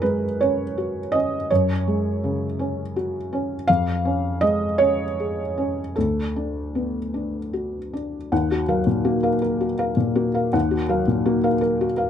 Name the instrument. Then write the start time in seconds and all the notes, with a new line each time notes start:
felt piano
Already playing: F#2 C#4 G#4 A#4
0.02 G#3 B4
0.41 C#4 C#5
0.78 F#4
1.12 C#4 D#5
1.50 F#2 C#5
1.88 G#3
2.24 C#3
2.59 C#4
2.96 F#4
3.33 C#4
3.68 F2 F5
4.05 C#4
4.41 G#3 D#5
4.78 C#4 C#5
5.20 G#4
5.58 C#4
5.96 D2 A4
6.36 D4
6.75 B3
7.14 D4
7.53 F#4
7.93 D4
8.32 D#2 F#5
8.51 F#4
8.68 F#3 A#4 F5
8.87 A#2
9.05 A#3 F#4
9.23 A#4 F5
9.42 A#4
9.61 F#4
9.79 A#4 F5
9.97 A#2
10.15 A#3 F#4
10.34 A#4 F5
10.53 D#2 F#5
10.71 F#4
10.89 F#3 A#4 F5
11.08 A#2
11.26 A#3 F#4
11.44 A#4 F5
11.61 A#4
11.81 F#4
11.97 A#4 F5